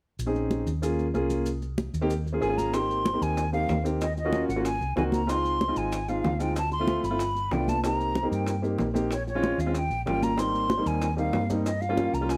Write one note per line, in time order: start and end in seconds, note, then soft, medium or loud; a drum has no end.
0.19 0.64 A#1 medium
0.19 high conga soft
0.19 maracas medium
0.26 0.66 C4 medium
0.26 0.66 C#4 medium
0.26 0.66 D#4 medium
0.26 0.66 G#4 medium
0.35 high conga soft
0.35 maracas soft
0.51 high conga medium
0.51 maracas soft
0.66 1.11 D#2 medium
0.66 high conga soft
0.66 maracas medium
0.82 1.05 A#3 medium
0.82 1.05 C#4 medium
0.82 1.05 F4 medium
0.82 1.05 G#4 medium
0.82 high conga soft
0.82 maracas medium
0.99 high conga soft
0.99 maracas soft
1.14 1.89 C2 medium
1.14 1.46 A#3 medium
1.14 1.47 C#4 medium
1.14 1.47 F4 medium
1.14 1.47 G#4 medium
1.14 high conga medium
1.14 maracas soft
1.30 high conga medium
1.30 maracas medium
1.46 high conga soft
1.46 maracas medium
1.62 high conga soft
1.62 maracas soft
1.78 high conga medium
1.78 maracas soft
1.94 2.38 D#2 medium
1.94 high conga soft
1.94 maracas medium
2.01 2.10 A#3 medium
2.01 2.10 C4 medium
2.01 2.10 D#4 medium
2.01 2.10 G4 loud
2.10 high conga soft
2.10 maracas medium
2.27 high conga soft
2.27 maracas soft
2.33 2.39 A#3 medium
2.33 2.39 C#4 medium
2.33 2.39 F4 medium
2.33 2.40 G#4 medium
2.41 3.16 G#1 medium
2.41 2.47 A#3 medium
2.41 2.47 C#4 medium
2.41 2.47 F4 medium
2.41 2.48 G#4 loud
2.41 2.59 G#5 medium
2.41 high conga soft
2.41 maracas soft
2.49 2.72 A#3 medium
2.49 2.72 C#4 medium
2.49 2.72 F4 medium
2.49 2.72 G#4 medium
2.58 2.75 A#5 medium
2.58 high conga medium
2.58 maracas medium
2.73 3.02 A#3 medium
2.73 3.02 C4 medium
2.73 3.02 D#4 medium
2.73 3.02 G4 medium
2.73 3.24 C6 medium
2.73 high bongo medium
2.73 high conga soft
2.73 maracas medium
2.89 high conga soft
2.89 maracas soft
3.05 high bongo medium
3.05 high conga medium
3.05 maracas soft
3.13 3.42 A#3 medium
3.13 3.41 C4 medium
3.13 3.42 D#4 medium
3.13 3.42 G4 medium
3.21 3.66 D#2 medium
3.21 3.53 G#5 loud
3.21 high conga soft
3.21 maracas medium
3.37 high bongo medium
3.37 high conga soft
3.37 maracas medium
3.53 3.75 A#3 medium
3.53 3.76 C4 medium
3.53 3.76 D#4 medium
3.53 3.76 G4 medium
3.53 3.83 F5 loud
3.53 high conga soft
3.53 maracas soft
3.69 4.43 D#2 medium
3.69 high bongo medium
3.69 low bongo medium
3.69 high conga medium
3.69 maracas soft
3.84 4.01 A#3 medium
3.84 4.01 C4 medium
3.84 4.01 D#4 medium
3.84 4.01 G4 medium
3.84 maracas medium
4.01 4.16 D#5 medium
4.01 high bongo medium
4.01 high conga soft
4.01 maracas medium
4.17 4.47 D#5 medium
4.17 high bongo soft
4.17 high conga soft
4.17 maracas soft
4.25 4.47 A#3 medium
4.25 4.47 C#4 medium
4.25 4.48 F4 medium
4.25 4.48 F#4 medium
4.33 high bongo medium
4.33 high conga medium
4.33 maracas soft
4.48 4.79 G#1 medium
4.48 4.63 F#5 medium
4.48 high bongo soft
4.48 high conga soft
4.48 maracas medium
4.56 4.65 A#3 medium
4.56 4.65 C#4 medium
4.56 4.65 F4 medium
4.56 4.65 F#4 medium
4.64 4.94 G#5 medium
4.64 high bongo medium
4.64 high conga soft
4.64 maracas medium
4.81 4.96 C2 medium
4.81 high conga soft
4.81 maracas soft
4.96 5.71 C#2 medium
4.96 5.19 A#3 medium
4.96 5.19 C4 medium
4.96 5.19 D#4 medium
4.96 5.19 F#4 medium
4.96 5.03 G#5 medium
4.96 high bongo medium
4.96 low bongo medium
4.96 high conga soft
4.96 maracas soft
5.12 5.31 A#5 medium
5.12 high bongo soft
5.12 high conga medium
5.12 maracas medium
5.27 5.56 G#3 medium
5.27 5.56 C4 medium
5.27 5.56 D#4 medium
5.27 5.56 F4 medium
5.27 5.79 C6 loud
5.27 high bongo medium
5.27 maracas medium
5.45 high conga soft
5.45 maracas soft
5.61 high bongo medium
5.61 high conga medium
5.61 maracas soft
5.68 5.96 G#3 medium
5.68 5.96 C4 medium
5.68 5.96 D#4 medium
5.68 5.96 F4 medium
5.76 6.21 G#1 medium
5.76 6.10 G#5 medium
5.76 high conga soft
5.76 maracas medium
5.92 high bongo medium
5.92 high conga soft
5.92 maracas medium
6.08 6.31 G#3 medium
6.08 6.31 C4 medium
6.08 6.31 D#4 medium
6.08 6.31 F4 medium
6.08 6.43 F5 medium
6.08 high conga soft
6.08 maracas soft
6.24 6.98 D2 medium
6.24 high bongo medium
6.24 low bongo medium
6.24 high conga medium
6.24 maracas soft
6.39 6.56 G#3 medium
6.39 6.56 C4 medium
6.39 6.56 D#4 medium
6.39 6.56 F4 medium
6.39 6.56 G5 medium
6.39 maracas medium
6.55 6.72 A5 medium
6.55 high bongo medium
6.55 high conga soft
6.55 maracas medium
6.71 7.06 C6 medium
6.71 high bongo soft
6.71 high conga soft
6.71 maracas soft
6.80 7.02 A3 medium
6.80 7.02 C4 medium
6.80 7.02 E4 medium
6.80 7.03 F4 medium
6.88 high bongo medium
6.88 high conga medium
6.88 maracas soft
7.03 7.48 G1 medium
7.03 7.54 B5 medium
7.03 high bongo soft
7.03 high conga soft
7.03 maracas medium
7.10 7.19 A3 medium
7.10 7.19 C4 medium
7.10 7.19 E4 medium
7.10 7.19 F4 medium
7.19 high bongo medium
7.19 high conga soft
7.19 maracas medium
7.36 high conga soft
7.36 maracas soft
7.51 8.25 C2 medium
7.51 7.74 A3 medium
7.51 7.74 B3 medium
7.51 7.74 D4 medium
7.51 7.74 F4 medium
7.51 7.70 G5 medium
7.51 high bongo medium
7.51 low bongo medium
7.51 high conga soft
7.51 maracas soft
7.68 7.84 A5 medium
7.68 high bongo soft
7.68 high conga medium
7.68 maracas medium
7.83 8.11 A#3 medium
7.83 8.11 C4 medium
7.83 8.11 D#4 medium
7.83 8.12 G4 medium
7.83 8.28 A#5 medium
7.83 high bongo medium
7.83 high conga soft
7.83 maracas medium
8.01 high conga soft
8.01 maracas soft
8.15 high bongo medium
8.15 high conga medium
8.15 maracas soft
8.23 8.51 A#3 medium
8.23 8.51 C4 medium
8.23 8.51 D#4 medium
8.23 8.51 G4 medium
8.32 8.76 G2 medium
8.32 8.61 G5 medium
8.32 high conga soft
8.32 maracas medium
8.47 high bongo medium
8.47 high conga soft
8.47 maracas medium
8.62 8.85 A#3 medium
8.62 8.85 C4 medium
8.62 8.85 D#4 medium
8.62 8.85 G4 medium
8.62 high conga soft
8.62 maracas soft
8.78 9.53 A#1 medium
8.78 high bongo medium
8.78 low bongo medium
8.78 high conga medium
8.78 maracas soft
8.94 9.10 A#3 medium
8.94 9.11 C4 medium
8.94 9.11 D#4 medium
8.94 9.11 G4 medium
8.94 high conga medium
8.94 maracas medium
9.11 9.26 C#5 medium
9.11 high bongo medium
9.11 high conga soft
9.11 maracas medium
9.27 9.62 C#5 medium
9.27 high bongo soft
9.27 high conga soft
9.27 maracas soft
9.35 9.57 G#3 medium
9.35 9.57 C4 medium
9.35 9.57 C#4 medium
9.35 9.58 F4 medium
9.43 high bongo medium
9.43 high conga medium
9.43 maracas soft
9.58 9.88 D#2 medium
9.58 9.75 F5 medium
9.58 high bongo soft
9.58 high conga soft
9.58 maracas medium
9.66 9.74 G#3 medium
9.66 9.74 C4 medium
9.66 9.74 C#4 medium
9.66 9.75 F4 medium
9.75 10.05 G5 medium
9.75 high bongo medium
9.75 high conga soft
9.75 maracas medium
9.90 10.05 A#1 medium
9.90 high conga soft
9.90 maracas soft
10.06 10.80 G#1 medium
10.06 10.28 G3 medium
10.06 10.29 A#3 medium
10.06 10.29 C#4 medium
10.06 10.29 F4 medium
10.06 10.25 G5 medium
10.06 high bongo medium
10.06 low bongo medium
10.06 high conga soft
10.06 maracas soft
10.23 10.41 A#5 medium
10.23 high bongo soft
10.23 high conga medium
10.23 maracas medium
10.37 10.65 G3 medium
10.37 10.66 A#3 medium
10.37 10.65 C4 medium
10.37 10.66 D#4 medium
10.37 10.89 C6 loud
10.37 high bongo medium
10.37 high conga soft
10.37 maracas medium
10.54 high conga soft
10.54 maracas soft
10.70 high bongo medium
10.70 high conga medium
10.70 maracas soft
10.78 11.06 G3 medium
10.78 11.06 A#3 medium
10.78 11.06 C4 medium
10.78 11.06 D#4 medium
10.86 11.30 D#2 medium
10.86 11.18 G#5 medium
10.86 high conga soft
10.86 maracas medium
11.02 high bongo medium
11.02 high conga soft
11.02 maracas medium
11.17 11.40 G3 medium
11.17 11.40 A#3 medium
11.17 11.40 C4 medium
11.17 11.40 D#4 medium
11.17 11.48 F5 medium
11.17 high conga soft
11.17 maracas soft
11.33 12.08 G2 medium
11.33 high bongo medium
11.33 low bongo medium
11.33 high conga medium
11.33 maracas soft
11.50 11.66 G3 medium
11.50 11.66 A#3 medium
11.50 11.66 C4 medium
11.50 11.66 D#4 medium
11.50 high conga medium
11.50 maracas medium
11.65 11.83 D#5 medium
11.65 high bongo medium
11.65 high conga soft
11.65 maracas medium
11.81 12.16 F5 medium
11.81 high bongo soft
11.81 high conga soft
11.81 maracas soft
11.89 12.12 G3 medium
11.89 12.12 A#3 medium
11.89 12.12 C#4 medium
11.89 12.12 F4 medium
11.97 high bongo medium
11.97 high conga medium
11.97 maracas soft
12.13 12.37 C2 medium
12.13 12.32 A#5 medium
12.13 high bongo soft
12.13 high conga soft
12.13 maracas medium
12.21 12.29 G3 medium
12.21 12.29 A#3 medium
12.21 12.30 C#4 medium
12.21 12.30 F4 medium
12.29 12.37 G#5 medium
12.29 high bongo medium
12.29 high conga soft
12.29 maracas medium